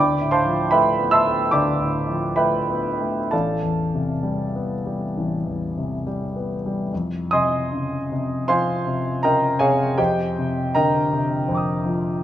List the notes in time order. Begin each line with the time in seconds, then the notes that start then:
Already playing: D2 D5 G5 B5 D6
0.21 A2
0.31 C5 F5 A5 C6
0.45 F3
0.71 A3 B4 E5 G5 B5
0.99 B3
1.11 E5 A5 C6 E6
1.26 A3
1.51 D2 D5 G5 B5 D6
1.80 A2
2.09 F3
2.36 A3 B4 E5 G5 B5
2.69 B3
3.01 A3
3.31 A1 A4 D5 F5 A5
3.63 E2
3.94 C3
4.23 G3
4.55 B3
4.86 G3
5.17 A1
5.46 E2
5.77 C3
6.07 G3
6.36 B3
6.66 G3
6.93 F2
7.31 C3 D#5 G#5 C6 D#6
7.73 C#3
8.12 C3
8.48 F3 C5 F5 G#5 C6
8.87 C3
9.23 C#3 A#4 D#5 G5 A#5
9.59 C3 G#4 C#5 F5 G#5
9.98 F2 G4 C5 D#5 G5
10.39 C3
10.75 D3 A#4 D#5 G5 A#5
11.13 C3
11.48 F2 C5 G5
11.55 D6 D#6
11.85 F3